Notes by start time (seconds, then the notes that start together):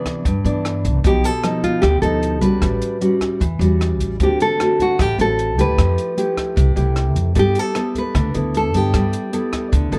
Already playing: C3 E3 B3 D4
0.05 kick, cross-stick, closed hi-hat
0.25 G2, kick, closed hi-hat
0.44 G2 E3 B3 D4, closed hi-hat
0.65 cross-stick, closed hi-hat
0.84 C2, kick, closed hi-hat
1.04 B1 B2 F3 B3 D#4 G4, kick, closed hi-hat
1.24 A4, closed hi-hat
1.43 F3 B3 D#4, cross-stick, closed hi-hat
1.63 F4, kick, closed hi-hat
1.82 D2 B2 G4, kick, cross-stick, closed hi-hat
2.02 D2 F3 B3 D#4 A4, closed hi-hat
2.23 closed hi-hat
2.41 B1 G3 C#4 F#4 B4, kick, closed hi-hat
2.62 A1 A2, kick, cross-stick, closed hi-hat
2.82 closed hi-hat
3.01 G3 C#4 F#4, closed hi-hat
3.21 kick, cross-stick, closed hi-hat
3.40 E2 E3, kick, closed hi-hat
3.59 E2 G3 C#4 F#4, closed hi-hat
3.81 cross-stick, closed hi-hat
4.00 A1, kick, closed hi-hat
4.20 D2 D3 A3 C4 F#4 G4, kick, closed hi-hat
4.40 A4, closed hi-hat
4.60 A3 C4 F#4, cross-stick, closed hi-hat
4.80 F#4, kick, closed hi-hat
4.99 A1 A2 G4, kick, cross-stick, closed hi-hat
5.18 A1 A3 C4 F#4 A4, closed hi-hat
5.39 closed hi-hat
5.58 D2 A3 E4 G4 B4, kick, closed hi-hat
5.78 F2 F3, kick, cross-stick, closed hi-hat
5.98 closed hi-hat
6.17 A3 E4 G4, closed hi-hat
6.37 kick, cross-stick, closed hi-hat
6.56 C2 C3, kick, closed hi-hat
6.76 C2 A3 E4 G4, closed hi-hat
6.96 cross-stick, closed hi-hat
7.16 F2, kick, closed hi-hat
7.35 G2 G3 B3 E4 A4, kick, closed hi-hat
7.39 G4
7.55 A4, closed hi-hat
7.75 B3 E4 A4, cross-stick, closed hi-hat
7.95 B4, kick, closed hi-hat
8.15 D2 D3, kick, cross-stick, closed hi-hat
8.34 D2 B3 E4 A4, closed hi-hat
8.54 A4, closed hi-hat
8.74 G2 B3 E4 G4 A4, kick, closed hi-hat
8.94 G2 G3, kick, cross-stick, closed hi-hat
9.13 closed hi-hat
9.33 B3 E4 A4, closed hi-hat
9.53 kick, cross-stick, closed hi-hat
9.72 D2 D3, kick, closed hi-hat
9.92 D2 B3 E4 A4, closed hi-hat